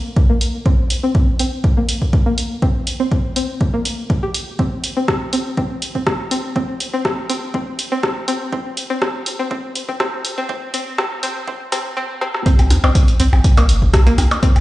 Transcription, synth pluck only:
0.30 0.35 A#3 medium
0.66 0.72 C4 medium
1.03 1.12 C4 medium
1.40 1.49 C4 medium
1.77 1.80 A#3 medium
2.26 2.32 A#3 medium
2.62 2.69 C4 medium
3.00 3.08 C4 medium
3.36 3.46 C4 medium
3.74 3.77 A#3 medium
4.23 4.26 G4 medium
4.59 4.65 C4 medium
4.97 5.05 C4 medium
5.33 5.37 C4 medium
5.57 5.64 C4 medium
5.95 6.04 C4 medium
6.31 6.35 C4 medium
6.56 6.62 C4 medium
6.93 7.02 C4 medium
7.29 7.33 C4 medium
7.54 7.61 C4 medium
7.92 8.00 C4 medium
8.28 8.32 C4 medium
8.53 8.59 C4 medium
8.90 8.99 C4 medium
9.02 9.08 C4 medium
9.39 9.48 C4 medium
9.51 9.57 C4 medium
9.89 9.97 C4 medium
10.00 10.06 C4 medium
10.38 10.46 C4 medium
10.49 10.56 C4 medium
10.74 10.80 C4 medium
10.98 11.05 C4 medium
11.23 11.29 C4 medium
11.47 11.54 C4 medium
11.72 11.79 C4 medium
11.97 12.03 C4 medium
12.21 12.28 C4 medium
12.46 12.52 C4 medium
12.84 12.92 C4 medium
13.20 13.24 C4 medium
13.57 13.61 A#3 medium
14.07 14.12 A#3 medium
14.43 14.49 C4 medium

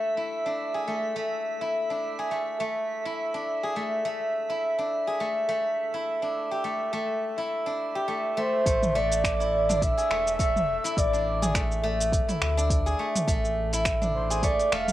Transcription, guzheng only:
0.00 0.80 A3 medium
0.00 0.45 D4 medium
0.00 0.17 E4 medium
0.00 0.80 G4 medium
0.17 1.61 E4 medium
0.46 1.90 D4 medium
0.74 0.94 G#4 medium
0.88 1.15 A3 medium
1.16 2.25 A3 medium
1.61 3.05 E4 medium
1.90 3.34 D4 medium
2.19 2.37 G#4 medium
2.31 2.60 A3 medium
2.60 3.69 A3 medium
3.05 4.49 E4 medium
3.34 4.78 D4 medium
3.63 3.82 G#4 medium
3.76 4.04 A3 medium
4.05 5.13 A3 medium
4.49 5.93 E4 medium
4.78 6.22 D4 medium
5.07 5.26 G#4 medium
5.20 5.48 A3 medium
5.49 6.64 A3 medium
5.94 7.37 E4 medium
6.22 7.66 D4 medium
6.51 7.95 G4 medium
6.64 6.92 A3 medium
6.93 8.07 A3 medium
7.38 9.40 E4 medium
7.66 9.69 D4 medium
7.95 10.03 G4 medium
8.08 8.37 A3 medium
8.37 8.66 A3 medium
8.66 8.95 A3 medium
8.95 10.03 A3 loud
9.40 10.84 E4 medium
9.69 11.13 D4 medium
9.97 10.16 G#4 medium
10.10 10.39 A3 medium
10.39 11.48 A3 medium
10.84 12.28 E4 medium
11.13 12.57 D4 medium
11.42 11.61 G#4 medium
11.55 11.83 A3 medium
11.83 12.92 A3 loud
12.28 13.73 E4 medium
12.57 14.01 D4 medium
12.86 13.05 G#4 medium
12.99 13.27 A3 medium
13.28 14.37 A3 loud
13.73 14.92 E4 medium
14.02 14.92 D4 medium
14.31 14.49 G#4 medium
14.43 14.72 A3 medium
14.72 14.92 A3 loud

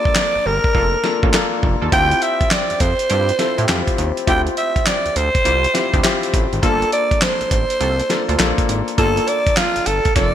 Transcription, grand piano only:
0.00 1.04 A#3 medium
0.00 1.04 D4 medium
0.00 1.04 F4 medium
0.00 1.05 A4 medium
1.04 1.30 A#3 medium
1.04 1.30 D4 medium
1.04 1.30 F4 medium
1.04 1.30 A4 medium
1.33 1.85 A#3 medium
1.33 1.85 D4 medium
1.33 1.85 F4 medium
1.33 1.86 A4 medium
1.92 2.93 C4 medium
1.92 2.93 E4 medium
1.92 2.93 F4 medium
1.92 2.93 G4 medium
3.39 3.65 C4 medium
3.39 3.65 E4 medium
3.39 3.65 F4 medium
3.39 3.65 A4 medium
3.68 4.20 C4 medium
3.68 4.20 E4 medium
3.68 4.20 F4 medium
3.68 4.21 G4 medium
4.27 5.28 C4 medium
4.27 5.28 E4 medium
4.27 5.28 F4 medium
4.27 5.28 G4 medium
5.74 6.00 C4 medium
5.74 6.00 E4 medium
5.74 6.00 F4 medium
5.74 6.01 G4 medium
6.03 6.55 C4 medium
6.03 6.56 E4 medium
6.03 6.56 F4 medium
6.03 6.56 G4 loud
6.62 7.63 A#3 medium
6.62 7.63 D4 medium
6.62 7.63 F4 medium
6.62 7.63 A4 medium
8.09 8.35 A#3 medium
8.09 8.36 D4 medium
8.09 8.36 F4 medium
8.09 8.36 A4 medium
8.39 8.91 A#3 medium
8.39 8.91 D4 medium
8.39 8.91 F4 medium
8.39 8.91 A4 medium
8.97 9.98 A#3 medium
8.97 9.98 D4 medium
8.97 9.99 F4 medium
8.97 9.99 A4 medium

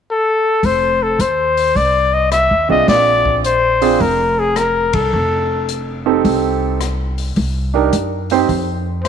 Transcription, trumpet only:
0.11 0.67 A4 medium
0.66 1.04 C5 loud
1.03 1.22 A4 medium
1.21 1.78 C5 medium
1.76 2.15 D5 loud
2.14 2.32 D#5 medium
2.32 2.67 E5 medium
2.70 2.87 D#5 loud
2.89 3.41 D5 loud
3.45 4.03 C5 medium
4.01 4.41 A#4 medium
4.39 4.59 G#4 medium
4.57 4.96 A#4 medium
4.94 5.69 A4 medium
9.04 9.08 C5 medium

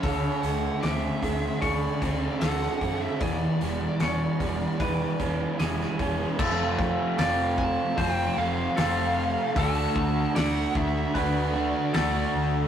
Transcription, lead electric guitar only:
0.00 0.39 C#5 loud
0.42 0.84 F#5 medium
0.81 1.60 E5 medium
1.61 2.37 D5 loud
2.40 3.02 F#5 medium
3.01 3.20 E5 medium
3.21 5.55 D5 medium
7.58 7.97 A5 loud
7.98 8.39 G5 loud
8.38 9.53 F5 loud
9.58 10.36 A5 loud
10.37 10.77 F#5 loud
10.77 11.17 E5 loud
11.17 12.31 D5 medium

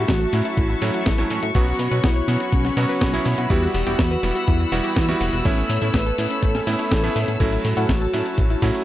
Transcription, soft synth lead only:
0.09 0.46 F#4 loud
0.58 1.45 E4 loud
1.55 1.73 F#4 loud
1.79 1.98 F#4 medium
2.04 2.41 E4 loud
2.53 3.40 C#4 loud
3.50 3.69 G4 loud
3.74 3.93 G4 medium
3.99 4.36 F#4 loud
4.48 5.35 E4 medium
5.45 5.64 C#5 loud
5.70 5.88 C#5 medium
5.94 6.31 B4 loud
6.43 7.31 A4 loud
7.40 7.59 A4 loud
7.65 7.83 A4 medium
7.89 8.26 F#4 loud
8.38 8.84 F#4 loud

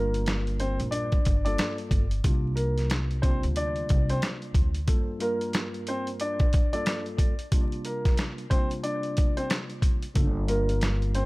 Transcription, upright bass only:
0.00 0.76 G1 loud
0.80 1.17 A#1 medium
1.27 1.53 G1 medium
1.91 2.18 G1 medium
2.24 3.40 C2 loud
3.44 3.81 D2 medium
3.90 4.17 C2 medium
4.55 4.88 D2 medium
10.16 11.26 G1 loud

